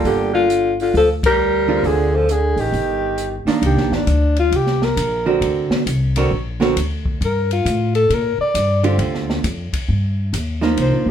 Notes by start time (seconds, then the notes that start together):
Already playing: G3 A#3 F4 A4
0.04 G1 D3 G4, kick, open hi-hat
0.33 D3 F4
0.50 closed hi-hat
0.80 D3 F4, open hi-hat
0.94 D2 F3 A4, kick, open hi-hat
1.23 G3 A#4, kick, ride
1.68 D3 C4 F4 G#4
1.83 D2 D3 G#4, kick, open hi-hat
2.15 F3 A4
2.29 D3 G#4, closed hi-hat
2.56 A1 D#3, open hi-hat
2.61 G4
2.72 G1, kick, open hi-hat
3.18 closed hi-hat
3.45 D#3 A#3 D4, muted upright bass stroke, snare, open hi-hat
3.62 C2, kick, ride
3.66 G4
3.76 A#1, snare
3.91 G1, snare
3.95 D4
4.07 D2, kick, hi-hat pedal, ride
4.36 F4, ride
4.51 C2, kick, ride
4.56 G4
4.67 snare
4.82 A#4, snare
4.97 A#1, kick, hi-hat pedal, ride
5.26 D3 C4 F#4 A#4
5.41 D2, kick, ride
5.70 muted upright bass stroke, snare
5.86 C2, kick, hi-hat pedal, ride
6.16 D3 C4 F#4 A#4, ride
6.31 A#1, kick
6.60 D3 C4 F#4 A#4, snare
6.76 D2, kick, hi-hat pedal, ride
7.05 kick
7.21 G2, kick, ride
7.25 A#4
7.51 F4, ride
7.65 A2, kick, hi-hat pedal, ride
7.95 A4, ride
8.10 A#2, kick, ride
8.14 A#4
8.38 D5, muted upright bass stroke
8.54 G2, kick, hi-hat pedal, ride
8.83 D3 C4 F4 G4, ride
8.98 D2, kick, ride
9.15 snare
9.30 snare
9.44 F2, kick, hi-hat pedal, ride
9.73 muted upright bass stroke, kick, ride
9.88 G2, kick
10.33 D#2, kick, hi-hat pedal, ride
10.61 F3 A#3 D#4, snare
10.77 C2, kick, ride
10.81 C5
10.91 A#1
11.06 G1